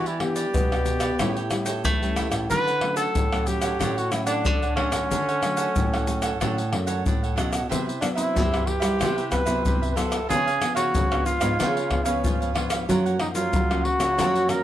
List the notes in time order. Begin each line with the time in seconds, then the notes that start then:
Already playing: E3
0.06 E4 G4 B4 D5, pandeiro, shaker
0.20 B3 D4 G4, muted cavaquinho stroke, pandeiro, tamborim
0.36 G4 B4 D5, pandeiro, shaker
0.54 B2, pandeiro, shaker, surdo
0.71 B3 D4 G4 B4 D5, pandeiro, tamborim, shaker
0.86 pandeiro, shaker
1.00 G4 B4 D5, pandeiro, tamborim, shaker
1.19 A2 G3 C#4 E4 A4 C#5 G5, pandeiro, tamborim, shaker, surdo
1.37 A4 C#5 G5, pandeiro, shaker
1.51 G3 C#4 E4, muted cavaquinho stroke, pandeiro, tamborim, shaker
1.66 A4 C#5 G5, pandeiro, shaker
1.84 E3 A3 E4 A4 C#5 G5, pandeiro, shaker, surdo
2.02 G3 C#4 E4 A4 C#5 G5, pandeiro, shaker
2.16 E4 A4 C#5 G5, pandeiro, tamborim, shaker
2.30 A2 A4 C#5 G5, pandeiro, tamborim, shaker
2.50 D3 F#3 A3 C#4 D4 A4 B4 C#5 F#5, pandeiro, shaker, surdo
2.67 A4 C#5 F#5, pandeiro, shaker
2.81 F#3 A3 C#4, muted cavaquinho stroke, pandeiro, tamborim
2.96 A4 C#5 F#5, pandeiro, shaker
3.15 A2, pandeiro, shaker, surdo
3.32 F#3 A3 C#4 A4 C#5 F#5, pandeiro, tamborim, shaker
3.47 F#3 A3 C#4 G4, pandeiro, shaker
3.62 A4 C#5 F#5, pandeiro, tamborim, shaker
3.79 A2 D3 F#3 A3 C#4 D4 A4 C#5 F#5, pandeiro, tamborim, shaker, surdo
3.97 F#4 A4 C#5 F#5, pandeiro, shaker
4.11 F#3 A3 C#4 E4, muted cavaquinho stroke, pandeiro, tamborim, shaker
4.26 D4 A4 C#5 F#5, pandeiro, shaker
4.45 A2 D3 D4 A4 C#5 F#5, pandeiro, shaker, surdo
4.62 A4 C#5 F#5, pandeiro, shaker
4.76 F#3 A3 C#4 D4 A4 C#5 F#5, pandeiro, tamborim
4.91 D3 A4 C#5 F#5, pandeiro, tamborim, shaker
5.10 D3 D4 A4 C#5 F#5, pandeiro, shaker, surdo
5.28 A4 C#5 F#5, pandeiro, shaker
5.42 F#3 A3 C#4, muted cavaquinho stroke, pandeiro, tamborim, shaker
5.57 A4 C#5 F#5, pandeiro, shaker
5.76 A2, pandeiro, shaker, surdo
5.93 F#3 A3 C#4 A4 C#5 F#5, pandeiro, tamborim, shaker
6.07 F#3 A3 C#4, pandeiro, shaker
6.22 A4 C#5 F#5, pandeiro, tamborim, shaker
6.40 A2 D3 F#3 A3 C#4 D4 A4 C#5 F#5, pandeiro, tamborim, shaker, surdo
6.58 A4 C#5 F#5, pandeiro, shaker
6.72 F#2 F#3 A3 C#4, muted cavaquinho stroke, pandeiro, tamborim
6.87 A4 C#5 F#5, pandeiro, shaker
7.06 A2 D4 A4 C#5 F#5, pandeiro, shaker, surdo
7.23 A4 C#5 F#5, pandeiro, shaker
7.36 B2 F#3 A3 C#4 D4 A4 C#5 F#5, pandeiro, tamborim, shaker
7.51 A4 C#5 F#5, pandeiro, tamborim, shaker
7.69 C3 F#3 B3 E4 G4 B4 C5 E5, pandeiro, shaker, surdo
7.87 B4 C5 E5, pandeiro, shaker
8.01 F#3 B3 D4 E4, muted cavaquinho stroke, pandeiro, tamborim, shaker
8.15 C4 E4 B4 C5 E5, pandeiro, shaker
8.35 G2 C3, pandeiro, shaker, surdo
8.51 F#3 E4 B4 C5 E5, pandeiro, tamborim, shaker
8.67 G4, pandeiro
8.80 G3 B4 C5 E5, pandeiro, tamborim, shaker
8.98 C3 F#3 B3 E4 G4 B4 C5 E5, pandeiro, tamborim, shaker, surdo
9.16 B4 C5 E5, pandeiro, shaker
9.30 F#3 B3 E4 B4, muted cavaquinho stroke, pandeiro, tamborim, shaker, surdo
9.45 C3 F#3 B3 E4 B4 C5 E5, pandeiro, shaker
9.65 G2 C3 G4 B4 C5 E5, pandeiro, shaker, surdo
9.82 B4 C5 E5, pandeiro, shaker
9.90 B4
9.96 F#3 B3 E4 G4 A4 B4 C5 E5, pandeiro, tamborim, shaker
10.10 B4 C5 E5, pandeiro, tamborim, shaker
10.29 C#3 F3 B3 D4 F4 G#4 B4 C#5 F5, pandeiro, shaker, surdo
10.46 B4 C#5 F5, pandeiro, shaker
10.60 F3 B3 D4, muted cavaquinho stroke, pandeiro, tamborim, shaker
10.75 C#3 F#4 B4 C#5 F5, pandeiro, shaker
10.94 G#2 C#3, pandeiro, shaker, surdo
11.11 F3 B3 D4 B4 C#5 F5, pandeiro, tamborim, shaker
11.26 F4, pandeiro, shaker
11.40 G#2 F3 B3 D4 B4 C#5 F5, pandeiro, tamborim, shaker
11.59 C#3 F3 B3 D4 F4 B4 C#5 F5, pandeiro, tamborim, shaker, surdo
11.76 B4 C#5 F5, pandeiro, shaker
11.90 F3 B3 D4 F4, muted cavaquinho stroke, pandeiro, tamborim, surdo
12.05 C#3 F3 B3 C#4 B4 C#5 F5, pandeiro, shaker
12.23 G#2 F3 F4 B4 C#5 F5, pandeiro, shaker, surdo
12.40 B4 C#5 F5, pandeiro, shaker
12.54 F3 B3 D4 F4 B4 C#5 F5, pandeiro, tamborim
12.70 B4 C#5 F5, pandeiro, tamborim, shaker
12.88 F#2 F3 F#3 A#3 C#4 F4 A#4 C#5 F#5, pandeiro, shaker, surdo
13.06 A#4 C#5 F#5, pandeiro, shaker
13.19 F3 A#3 C#4 D#4, muted cavaquinho stroke, pandeiro, tamborim
13.35 F#3 F4 A#4 C#5, pandeiro, shaker
13.53 C#3 F#3, pandeiro, shaker, surdo
13.70 F3 A#3 C#4 A#4 C#5 F#5, pandeiro, tamborim, shaker
13.85 F#4, pandeiro
13.99 C#3 F3 A#3 C#4 A#4 C#5 F#5, pandeiro, tamborim, shaker
14.17 F#2 F3 F#3 A#3 C#4 F4 A#4 C#5 F#5, pandeiro, tamborim, shaker, surdo
14.35 A#4 C#5 F#5, pandeiro, shaker
14.49 F3 A#3 C#4 A#4, muted cavaquinho stroke, pandeiro, tamborim, shaker